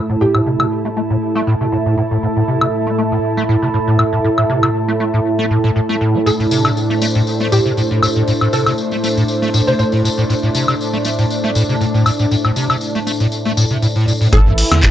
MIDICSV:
0, 0, Header, 1, 7, 480
1, 0, Start_track
1, 0, Key_signature, 0, "minor"
1, 0, Tempo, 504202
1, 200, Time_signature, 4, 2, 24, 8
1, 14192, End_track
2, 0, Start_track
2, 0, Title_t, "Ambient pad"
2, 0, Program_c, 0, 92
2, 0, Note_on_c, 0, 64, 78
2, 0, Note_on_c, 0, 69, 77
2, 0, Note_on_c, 0, 81, 93
2, 6340, Note_on_c, 0, 72, 88
2, 6363, Note_off_c, 0, 81, 0
2, 13640, Note_off_c, 0, 64, 0
2, 13641, Note_off_c, 0, 69, 0
2, 13666, Note_off_c, 0, 72, 0
2, 14192, End_track
3, 0, Start_track
3, 0, Title_t, "Synth pluck"
3, 0, Program_c, 1, 84
3, 201, Note_on_c, 1, 67, 89
3, 681, Note_off_c, 1, 67, 0
3, 5963, Note_on_c, 1, 69, 88
3, 6637, Note_off_c, 1, 69, 0
3, 7161, Note_on_c, 1, 67, 88
3, 7836, Note_off_c, 1, 67, 0
3, 8121, Note_on_c, 1, 69, 91
3, 8286, Note_off_c, 1, 69, 0
3, 9210, Note_on_c, 1, 72, 89
3, 9281, Note_off_c, 1, 72, 0
3, 9320, Note_on_c, 1, 72, 75
3, 9403, Note_off_c, 1, 72, 0
3, 13638, Note_on_c, 1, 69, 94
3, 14192, Note_off_c, 1, 69, 0
3, 14192, End_track
4, 0, Start_track
4, 0, Title_t, "Analog synth pad"
4, 0, Program_c, 2, 89
4, 0, Note_on_c, 2, 45, 82
4, 0, Note_on_c, 2, 57, 75
4, 0, Note_on_c, 2, 64, 89
4, 5921, Note_off_c, 2, 64, 0
4, 5962, Note_on_c, 2, 62, 89
4, 13601, Note_off_c, 2, 45, 0
4, 13602, Note_off_c, 2, 57, 0
4, 13603, Note_off_c, 2, 62, 0
4, 13641, Note_on_c, 2, 52, 85
4, 13641, Note_on_c, 2, 57, 79
4, 13642, Note_on_c, 2, 64, 89
4, 14192, Note_off_c, 2, 52, 0
4, 14192, Note_off_c, 2, 57, 0
4, 14192, Note_off_c, 2, 64, 0
4, 14192, End_track
5, 0, Start_track
5, 0, Title_t, "Acid bass"
5, 0, Program_c, 3, 38
5, 90, Note_on_c, 3, 45, 76
5, 151, Note_off_c, 3, 45, 0
5, 202, Note_on_c, 3, 45, 79
5, 244, Note_off_c, 3, 45, 0
5, 331, Note_on_c, 3, 45, 75
5, 391, Note_off_c, 3, 45, 0
5, 440, Note_on_c, 3, 48, 70
5, 547, Note_off_c, 3, 48, 0
5, 570, Note_on_c, 3, 48, 69
5, 631, Note_off_c, 3, 48, 0
5, 810, Note_on_c, 3, 57, 76
5, 846, Note_off_c, 3, 57, 0
5, 921, Note_on_c, 3, 57, 79
5, 963, Note_off_c, 3, 57, 0
5, 1050, Note_on_c, 3, 45, 74
5, 1111, Note_off_c, 3, 45, 0
5, 1289, Note_on_c, 3, 57, 98
5, 1350, Note_off_c, 3, 57, 0
5, 1401, Note_on_c, 3, 45, 99
5, 1472, Note_off_c, 3, 45, 0
5, 1531, Note_on_c, 3, 48, 75
5, 1591, Note_off_c, 3, 48, 0
5, 1641, Note_on_c, 3, 45, 80
5, 1683, Note_off_c, 3, 45, 0
5, 1770, Note_on_c, 3, 45, 75
5, 1861, Note_off_c, 3, 45, 0
5, 1881, Note_on_c, 3, 45, 76
5, 1923, Note_off_c, 3, 45, 0
5, 2011, Note_on_c, 3, 45, 75
5, 2071, Note_off_c, 3, 45, 0
5, 2122, Note_on_c, 3, 45, 76
5, 2164, Note_off_c, 3, 45, 0
5, 2251, Note_on_c, 3, 45, 73
5, 2311, Note_off_c, 3, 45, 0
5, 2360, Note_on_c, 3, 48, 74
5, 2467, Note_off_c, 3, 48, 0
5, 2490, Note_on_c, 3, 48, 76
5, 2551, Note_off_c, 3, 48, 0
5, 2729, Note_on_c, 3, 57, 77
5, 2766, Note_off_c, 3, 57, 0
5, 2841, Note_on_c, 3, 57, 76
5, 2883, Note_off_c, 3, 57, 0
5, 2969, Note_on_c, 3, 45, 73
5, 3030, Note_off_c, 3, 45, 0
5, 3211, Note_on_c, 3, 57, 98
5, 3271, Note_off_c, 3, 57, 0
5, 3321, Note_on_c, 3, 45, 100
5, 3392, Note_off_c, 3, 45, 0
5, 3450, Note_on_c, 3, 48, 72
5, 3511, Note_off_c, 3, 48, 0
5, 3560, Note_on_c, 3, 45, 77
5, 3603, Note_off_c, 3, 45, 0
5, 3690, Note_on_c, 3, 45, 73
5, 3781, Note_off_c, 3, 45, 0
5, 3800, Note_on_c, 3, 45, 76
5, 3843, Note_off_c, 3, 45, 0
5, 3929, Note_on_c, 3, 45, 73
5, 3990, Note_off_c, 3, 45, 0
5, 4040, Note_on_c, 3, 45, 80
5, 4083, Note_off_c, 3, 45, 0
5, 4170, Note_on_c, 3, 45, 75
5, 4231, Note_off_c, 3, 45, 0
5, 4280, Note_on_c, 3, 48, 71
5, 4386, Note_off_c, 3, 48, 0
5, 4409, Note_on_c, 3, 48, 71
5, 4470, Note_off_c, 3, 48, 0
5, 4650, Note_on_c, 3, 57, 81
5, 4686, Note_off_c, 3, 57, 0
5, 4761, Note_on_c, 3, 57, 75
5, 4803, Note_off_c, 3, 57, 0
5, 4890, Note_on_c, 3, 45, 74
5, 4951, Note_off_c, 3, 45, 0
5, 5130, Note_on_c, 3, 57, 97
5, 5191, Note_off_c, 3, 57, 0
5, 5241, Note_on_c, 3, 45, 78
5, 5312, Note_off_c, 3, 45, 0
5, 5369, Note_on_c, 3, 45, 97
5, 5430, Note_off_c, 3, 45, 0
5, 5482, Note_on_c, 3, 45, 82
5, 5524, Note_off_c, 3, 45, 0
5, 5610, Note_on_c, 3, 57, 96
5, 5671, Note_off_c, 3, 57, 0
5, 5721, Note_on_c, 3, 45, 72
5, 5850, Note_on_c, 3, 60, 100
5, 5864, Note_off_c, 3, 45, 0
5, 5886, Note_off_c, 3, 60, 0
5, 5961, Note_on_c, 3, 45, 80
5, 6003, Note_off_c, 3, 45, 0
5, 6090, Note_on_c, 3, 45, 73
5, 6151, Note_off_c, 3, 45, 0
5, 6201, Note_on_c, 3, 48, 74
5, 6307, Note_off_c, 3, 48, 0
5, 6330, Note_on_c, 3, 48, 76
5, 6391, Note_off_c, 3, 48, 0
5, 6570, Note_on_c, 3, 57, 78
5, 6606, Note_off_c, 3, 57, 0
5, 6680, Note_on_c, 3, 57, 73
5, 6723, Note_off_c, 3, 57, 0
5, 6811, Note_on_c, 3, 45, 75
5, 6871, Note_off_c, 3, 45, 0
5, 7050, Note_on_c, 3, 57, 94
5, 7110, Note_off_c, 3, 57, 0
5, 7161, Note_on_c, 3, 45, 102
5, 7232, Note_off_c, 3, 45, 0
5, 7289, Note_on_c, 3, 48, 75
5, 7350, Note_off_c, 3, 48, 0
5, 7400, Note_on_c, 3, 45, 78
5, 7443, Note_off_c, 3, 45, 0
5, 7530, Note_on_c, 3, 45, 74
5, 7621, Note_off_c, 3, 45, 0
5, 7641, Note_on_c, 3, 45, 73
5, 7683, Note_off_c, 3, 45, 0
5, 7769, Note_on_c, 3, 45, 72
5, 7830, Note_off_c, 3, 45, 0
5, 7881, Note_on_c, 3, 45, 78
5, 7923, Note_off_c, 3, 45, 0
5, 8010, Note_on_c, 3, 45, 72
5, 8071, Note_off_c, 3, 45, 0
5, 8122, Note_on_c, 3, 48, 69
5, 8227, Note_off_c, 3, 48, 0
5, 8252, Note_on_c, 3, 48, 74
5, 8312, Note_off_c, 3, 48, 0
5, 8492, Note_on_c, 3, 57, 78
5, 8527, Note_off_c, 3, 57, 0
5, 8603, Note_on_c, 3, 57, 75
5, 8644, Note_off_c, 3, 57, 0
5, 8731, Note_on_c, 3, 45, 76
5, 8791, Note_off_c, 3, 45, 0
5, 8970, Note_on_c, 3, 57, 92
5, 9031, Note_off_c, 3, 57, 0
5, 9082, Note_on_c, 3, 45, 98
5, 9152, Note_off_c, 3, 45, 0
5, 9211, Note_on_c, 3, 48, 75
5, 9271, Note_off_c, 3, 48, 0
5, 9321, Note_on_c, 3, 45, 80
5, 9363, Note_off_c, 3, 45, 0
5, 9450, Note_on_c, 3, 45, 72
5, 9541, Note_off_c, 3, 45, 0
5, 9562, Note_on_c, 3, 45, 73
5, 9604, Note_off_c, 3, 45, 0
5, 9691, Note_on_c, 3, 45, 75
5, 9751, Note_off_c, 3, 45, 0
5, 9802, Note_on_c, 3, 45, 80
5, 9843, Note_off_c, 3, 45, 0
5, 9931, Note_on_c, 3, 45, 76
5, 9991, Note_off_c, 3, 45, 0
5, 10041, Note_on_c, 3, 48, 72
5, 10147, Note_off_c, 3, 48, 0
5, 10170, Note_on_c, 3, 48, 72
5, 10231, Note_off_c, 3, 48, 0
5, 10409, Note_on_c, 3, 57, 78
5, 10446, Note_off_c, 3, 57, 0
5, 10521, Note_on_c, 3, 57, 77
5, 10563, Note_off_c, 3, 57, 0
5, 10650, Note_on_c, 3, 45, 79
5, 10711, Note_off_c, 3, 45, 0
5, 10890, Note_on_c, 3, 57, 100
5, 10951, Note_off_c, 3, 57, 0
5, 11001, Note_on_c, 3, 45, 101
5, 11071, Note_off_c, 3, 45, 0
5, 11130, Note_on_c, 3, 48, 72
5, 11191, Note_off_c, 3, 48, 0
5, 11240, Note_on_c, 3, 45, 79
5, 11283, Note_off_c, 3, 45, 0
5, 11369, Note_on_c, 3, 45, 72
5, 11461, Note_off_c, 3, 45, 0
5, 11481, Note_on_c, 3, 45, 73
5, 11523, Note_off_c, 3, 45, 0
5, 11610, Note_on_c, 3, 45, 74
5, 11671, Note_off_c, 3, 45, 0
5, 11722, Note_on_c, 3, 45, 81
5, 11764, Note_off_c, 3, 45, 0
5, 11850, Note_on_c, 3, 45, 72
5, 11911, Note_off_c, 3, 45, 0
5, 11960, Note_on_c, 3, 48, 75
5, 12067, Note_off_c, 3, 48, 0
5, 12089, Note_on_c, 3, 48, 74
5, 12150, Note_off_c, 3, 48, 0
5, 12329, Note_on_c, 3, 57, 75
5, 12366, Note_off_c, 3, 57, 0
5, 12439, Note_on_c, 3, 57, 76
5, 12482, Note_off_c, 3, 57, 0
5, 12569, Note_on_c, 3, 45, 72
5, 12630, Note_off_c, 3, 45, 0
5, 12809, Note_on_c, 3, 57, 96
5, 12870, Note_off_c, 3, 57, 0
5, 12921, Note_on_c, 3, 45, 106
5, 12991, Note_off_c, 3, 45, 0
5, 13048, Note_on_c, 3, 48, 71
5, 13110, Note_off_c, 3, 48, 0
5, 13159, Note_on_c, 3, 45, 78
5, 13202, Note_off_c, 3, 45, 0
5, 13288, Note_on_c, 3, 45, 74
5, 13380, Note_off_c, 3, 45, 0
5, 13398, Note_on_c, 3, 45, 75
5, 13442, Note_off_c, 3, 45, 0
5, 13527, Note_on_c, 3, 45, 72
5, 13589, Note_off_c, 3, 45, 0
5, 13638, Note_on_c, 3, 45, 98
5, 13710, Note_off_c, 3, 45, 0
5, 13768, Note_on_c, 3, 43, 75
5, 13830, Note_off_c, 3, 43, 0
5, 14007, Note_on_c, 3, 50, 105
5, 14100, Note_off_c, 3, 50, 0
5, 14119, Note_on_c, 3, 45, 84
5, 14191, Note_off_c, 3, 45, 0
5, 14192, End_track
6, 0, Start_track
6, 0, Title_t, "Analog synth bass"
6, 0, Program_c, 4, 38
6, 13639, Note_on_c, 4, 33, 99
6, 13935, Note_off_c, 4, 33, 0
6, 14008, Note_on_c, 4, 40, 86
6, 14156, Note_off_c, 4, 40, 0
6, 14192, End_track
7, 0, Start_track
7, 0, Title_t, "Drums"
7, 329, Note_on_c, 9, 76, 57
7, 424, Note_off_c, 9, 76, 0
7, 570, Note_on_c, 9, 76, 72
7, 665, Note_off_c, 9, 76, 0
7, 2489, Note_on_c, 9, 76, 74
7, 2584, Note_off_c, 9, 76, 0
7, 3799, Note_on_c, 9, 76, 73
7, 3894, Note_off_c, 9, 76, 0
7, 4168, Note_on_c, 9, 76, 59
7, 4264, Note_off_c, 9, 76, 0
7, 4408, Note_on_c, 9, 76, 76
7, 4503, Note_off_c, 9, 76, 0
7, 5965, Note_on_c, 9, 54, 54
7, 6060, Note_off_c, 9, 54, 0
7, 6096, Note_on_c, 9, 54, 24
7, 6191, Note_off_c, 9, 54, 0
7, 6199, Note_on_c, 9, 54, 88
7, 6295, Note_off_c, 9, 54, 0
7, 6329, Note_on_c, 9, 76, 77
7, 6333, Note_on_c, 9, 54, 39
7, 6424, Note_off_c, 9, 76, 0
7, 6429, Note_off_c, 9, 54, 0
7, 6444, Note_on_c, 9, 54, 52
7, 6540, Note_off_c, 9, 54, 0
7, 6573, Note_on_c, 9, 54, 23
7, 6669, Note_off_c, 9, 54, 0
7, 6679, Note_on_c, 9, 54, 80
7, 6774, Note_off_c, 9, 54, 0
7, 6808, Note_on_c, 9, 54, 36
7, 6903, Note_off_c, 9, 54, 0
7, 6921, Note_on_c, 9, 54, 50
7, 7016, Note_off_c, 9, 54, 0
7, 7044, Note_on_c, 9, 54, 22
7, 7139, Note_off_c, 9, 54, 0
7, 7161, Note_on_c, 9, 54, 97
7, 7256, Note_off_c, 9, 54, 0
7, 7294, Note_on_c, 9, 54, 37
7, 7389, Note_off_c, 9, 54, 0
7, 7400, Note_on_c, 9, 54, 48
7, 7495, Note_off_c, 9, 54, 0
7, 7529, Note_on_c, 9, 54, 23
7, 7625, Note_off_c, 9, 54, 0
7, 7641, Note_on_c, 9, 76, 77
7, 7647, Note_on_c, 9, 54, 88
7, 7736, Note_off_c, 9, 76, 0
7, 7743, Note_off_c, 9, 54, 0
7, 7766, Note_on_c, 9, 54, 36
7, 7861, Note_off_c, 9, 54, 0
7, 7879, Note_on_c, 9, 54, 48
7, 7974, Note_off_c, 9, 54, 0
7, 8010, Note_on_c, 9, 54, 24
7, 8010, Note_on_c, 9, 76, 60
7, 8105, Note_off_c, 9, 54, 0
7, 8105, Note_off_c, 9, 76, 0
7, 8119, Note_on_c, 9, 54, 77
7, 8214, Note_off_c, 9, 54, 0
7, 8249, Note_on_c, 9, 76, 79
7, 8250, Note_on_c, 9, 54, 37
7, 8344, Note_off_c, 9, 76, 0
7, 8345, Note_off_c, 9, 54, 0
7, 8358, Note_on_c, 9, 54, 50
7, 8453, Note_off_c, 9, 54, 0
7, 8484, Note_on_c, 9, 54, 25
7, 8580, Note_off_c, 9, 54, 0
7, 8604, Note_on_c, 9, 54, 79
7, 8699, Note_off_c, 9, 54, 0
7, 8734, Note_on_c, 9, 54, 36
7, 8829, Note_off_c, 9, 54, 0
7, 8837, Note_on_c, 9, 54, 52
7, 8932, Note_off_c, 9, 54, 0
7, 8973, Note_on_c, 9, 54, 24
7, 9069, Note_off_c, 9, 54, 0
7, 9081, Note_on_c, 9, 54, 76
7, 9176, Note_off_c, 9, 54, 0
7, 9216, Note_on_c, 9, 54, 37
7, 9311, Note_off_c, 9, 54, 0
7, 9321, Note_on_c, 9, 54, 43
7, 9416, Note_off_c, 9, 54, 0
7, 9444, Note_on_c, 9, 54, 24
7, 9539, Note_off_c, 9, 54, 0
7, 9570, Note_on_c, 9, 54, 88
7, 9665, Note_off_c, 9, 54, 0
7, 9696, Note_on_c, 9, 54, 33
7, 9791, Note_off_c, 9, 54, 0
7, 9805, Note_on_c, 9, 54, 44
7, 9900, Note_off_c, 9, 54, 0
7, 9930, Note_on_c, 9, 54, 25
7, 10025, Note_off_c, 9, 54, 0
7, 10041, Note_on_c, 9, 54, 79
7, 10136, Note_off_c, 9, 54, 0
7, 10170, Note_on_c, 9, 76, 78
7, 10175, Note_on_c, 9, 54, 38
7, 10265, Note_off_c, 9, 76, 0
7, 10270, Note_off_c, 9, 54, 0
7, 10288, Note_on_c, 9, 54, 50
7, 10383, Note_off_c, 9, 54, 0
7, 10410, Note_on_c, 9, 54, 26
7, 10505, Note_off_c, 9, 54, 0
7, 10516, Note_on_c, 9, 54, 76
7, 10611, Note_off_c, 9, 54, 0
7, 10649, Note_on_c, 9, 54, 34
7, 10744, Note_off_c, 9, 54, 0
7, 10762, Note_on_c, 9, 54, 47
7, 10857, Note_off_c, 9, 54, 0
7, 10887, Note_on_c, 9, 54, 23
7, 10982, Note_off_c, 9, 54, 0
7, 10997, Note_on_c, 9, 54, 88
7, 11092, Note_off_c, 9, 54, 0
7, 11134, Note_on_c, 9, 54, 34
7, 11229, Note_off_c, 9, 54, 0
7, 11246, Note_on_c, 9, 54, 47
7, 11341, Note_off_c, 9, 54, 0
7, 11373, Note_on_c, 9, 54, 22
7, 11468, Note_off_c, 9, 54, 0
7, 11481, Note_on_c, 9, 76, 74
7, 11482, Note_on_c, 9, 54, 75
7, 11576, Note_off_c, 9, 76, 0
7, 11578, Note_off_c, 9, 54, 0
7, 11606, Note_on_c, 9, 54, 36
7, 11701, Note_off_c, 9, 54, 0
7, 11722, Note_on_c, 9, 54, 46
7, 11817, Note_off_c, 9, 54, 0
7, 11849, Note_on_c, 9, 76, 56
7, 11855, Note_on_c, 9, 54, 22
7, 11944, Note_off_c, 9, 76, 0
7, 11951, Note_off_c, 9, 54, 0
7, 11958, Note_on_c, 9, 54, 76
7, 12053, Note_off_c, 9, 54, 0
7, 12089, Note_on_c, 9, 76, 76
7, 12093, Note_on_c, 9, 54, 34
7, 12184, Note_off_c, 9, 76, 0
7, 12188, Note_off_c, 9, 54, 0
7, 12194, Note_on_c, 9, 54, 46
7, 12289, Note_off_c, 9, 54, 0
7, 12330, Note_on_c, 9, 54, 23
7, 12426, Note_off_c, 9, 54, 0
7, 12441, Note_on_c, 9, 54, 72
7, 12537, Note_off_c, 9, 54, 0
7, 12568, Note_on_c, 9, 54, 38
7, 12663, Note_off_c, 9, 54, 0
7, 12679, Note_on_c, 9, 54, 48
7, 12774, Note_off_c, 9, 54, 0
7, 12807, Note_on_c, 9, 54, 26
7, 12902, Note_off_c, 9, 54, 0
7, 12921, Note_on_c, 9, 54, 87
7, 13016, Note_off_c, 9, 54, 0
7, 13043, Note_on_c, 9, 54, 36
7, 13138, Note_off_c, 9, 54, 0
7, 13161, Note_on_c, 9, 54, 49
7, 13256, Note_off_c, 9, 54, 0
7, 13286, Note_on_c, 9, 54, 26
7, 13381, Note_off_c, 9, 54, 0
7, 13404, Note_on_c, 9, 54, 88
7, 13499, Note_off_c, 9, 54, 0
7, 13532, Note_on_c, 9, 54, 39
7, 13627, Note_off_c, 9, 54, 0
7, 13639, Note_on_c, 9, 42, 67
7, 13640, Note_on_c, 9, 36, 123
7, 13735, Note_off_c, 9, 36, 0
7, 13735, Note_off_c, 9, 42, 0
7, 13879, Note_on_c, 9, 46, 109
7, 13880, Note_on_c, 9, 38, 55
7, 13880, Note_on_c, 9, 42, 72
7, 13974, Note_off_c, 9, 46, 0
7, 13975, Note_off_c, 9, 38, 0
7, 13975, Note_off_c, 9, 42, 0
7, 14009, Note_on_c, 9, 38, 59
7, 14009, Note_on_c, 9, 76, 80
7, 14104, Note_off_c, 9, 38, 0
7, 14104, Note_off_c, 9, 76, 0
7, 14117, Note_on_c, 9, 39, 127
7, 14119, Note_on_c, 9, 38, 122
7, 14119, Note_on_c, 9, 42, 88
7, 14120, Note_on_c, 9, 36, 122
7, 14192, Note_off_c, 9, 36, 0
7, 14192, Note_off_c, 9, 38, 0
7, 14192, Note_off_c, 9, 39, 0
7, 14192, Note_off_c, 9, 42, 0
7, 14192, End_track
0, 0, End_of_file